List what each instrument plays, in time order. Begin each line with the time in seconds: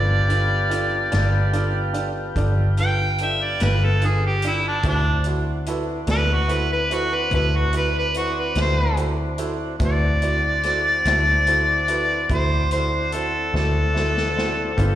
Already playing: fingered electric bass G1, tonewheel organ B3 F4 G4, upright piano D4 F4 A4 B4, harmonica D5
0.28 upright piano D4 F4 A4 D5, closed hi-hat
0.70 upright piano D4 F4 A4 D5, closed hi-hat
1.11 fingered electric bass G1, upright piano D4 F4 A4 D5, snare, closed hi-hat
1.53 upright piano D4 F4 A4 D5, closed hi-hat
1.93 upright piano D4 F4 A4 D5, closed hi-hat
2.36 fingered electric bass G1, upright piano D4 F4 A4 D5, kick, closed hi-hat
2.77 upright piano D4 F4 A4 B4, harmonica G5, closed hi-hat
3.18 upright piano D4 F4 A4 D5, closed hi-hat
3.24 harmonica E5
3.44 harmonica D5
3.60 fingered electric bass G1, upright piano D4 F4 A4 B4, harmonica B4, snare, closed hi-hat
3.85 harmonica A4
4.01 upright piano D4 F4 A4 B4, closed hi-hat
4.06 harmonica G#4
4.26 harmonica G4
4.42 upright piano D4 F4 A4 D5, closed hi-hat
4.47 harmonica E4
4.68 harmonica D4
4.83 fingered electric bass D2, tonewheel organ C4 D4 F#4, upright piano E4 F#4 A4 C5, kick, closed hi-hat
4.88 harmonica D4
5.24 upright piano E4 F#4 A4 C5, closed hi-hat
5.66 upright piano E4 F#4 A4 B4, closed hi-hat
6.07 fingered electric bass D2, upright piano E4 F#4 A4 D5, snare, closed hi-hat
6.11 harmonica B4
6.33 harmonica F#4
6.48 upright piano E4 F#4 A4 C5, closed hi-hat
6.53 harmonica B4
6.72 harmonica B4
6.90 upright piano E4 F#4 A4 C5, harmonica F#4, closed hi-hat
7.15 harmonica B4
7.31 fingered electric bass D2, upright piano E4 F#4 A4 C5, harmonica B4, kick, closed hi-hat
7.56 harmonica F#4
7.73 upright piano E4 F#4 A4 B4, harmonica B4, closed hi-hat
7.99 harmonica B4
8.14 upright piano E4 F#4 A4 C5, harmonica F#4, closed hi-hat
8.40 harmonica B4
8.55 fingered electric bass D2, upright piano E4 F#4 A4 C5, snare, closed hi-hat
8.62 harmonica C5
8.97 upright piano E4 F#4 A4 C5, closed hi-hat
9.38 upright piano E4 F#4 A4 C5, closed hi-hat
9.79 fingered electric bass D2, tonewheel organ C4 D4 F#4, upright piano E4 F#4 A4 B4, kick, closed hi-hat
9.85 harmonica D5
10.22 upright piano E4 F#4 A4 D5, closed hi-hat
10.63 upright piano E4 F#4 A4 C5, snare, closed hi-hat
11.05 fingered electric bass D2, upright piano E4 F#4 A4 C5, snare, closed hi-hat
11.47 upright piano E4 F#4 A4 C5, closed hi-hat
11.88 upright piano E4 F#4 A4 B4, closed hi-hat
12.29 fingered electric bass D2, upright piano E4 F#4 A4 B5, kick, closed hi-hat
12.33 harmonica C5
12.71 upright piano E4 F#4 A4 C5, harmonica C5, closed hi-hat
13.12 upright piano E4 F#4 A4 C5, harmonica A4, closed hi-hat
13.54 fingered electric bass D2, upright piano E4 F#4 A4 C5, harmonica A4, snare
13.94 upright piano E4 F#4 A4 C5, snare
14.17 snare
14.37 upright piano E4 F#4 A4 C5, snare
14.77 fingered electric bass G1, tonewheel organ B3 F4 G4, upright piano D4 F4 A4 B4, kick, closed hi-hat